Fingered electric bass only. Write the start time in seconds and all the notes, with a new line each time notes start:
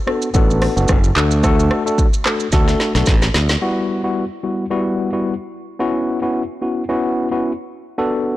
0.35 A1
0.77 F#1
0.89 F#1
1.16 D2
2.53 D2
2.95 B1
3.07 A1
3.35 D2